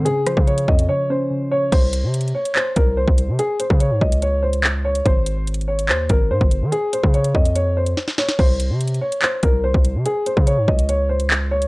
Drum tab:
CC |------------------------------------------------|x-----------------------------------------------|------------------------------------------------|------------------------------------------------|
HH |x-----x-----x--x-----x--------------------------|x-----x-----x-x-x----x--------x-----------x-----|x-----x-----x--------x--x--------x-----------x--|x-----x-----x-x-x----x--------x-----------x-----|
CP |------------------------------------------------|------------------------x-----------------------|------------------------------------x-----------|------------------------x-----------------------|
SD |------r-----------------------------------------|------------------------------------------------|------------------------------------------------|------------------------------------------------|
BD |---------o--------o-----------------------------|o-----------------------------o--------o--------|---------o--------o-----------------------------|o-----------------------------o--------o--------|

CC |------------------------------------------------|x-----------------------------------------------|------------------------------------------------|
HH |x-----x-----x--x-----x--x--------x-----------x--|------x-----x-x-x----x--------x-----------x-----|x-----x-----x--------x--x--------x-----------x--|
CP |------------------------------------------------|------------------------x-----------------------|------------------------------------x-----------|
SD |------------------------------------o--o--o--o--|------------------------------------------------|------------------------------------------------|
BD |---------o--------o-----------------------------|o-----------------------------o--------o--------|---------o--------o-----------------------------|